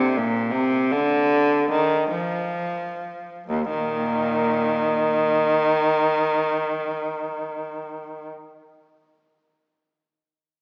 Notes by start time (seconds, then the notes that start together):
Already playing: C3
0.17 A#2
0.52 C3
0.92 D3
1.71 D#3
2.10 F3
3.49 D#2
3.70 A#2 D#3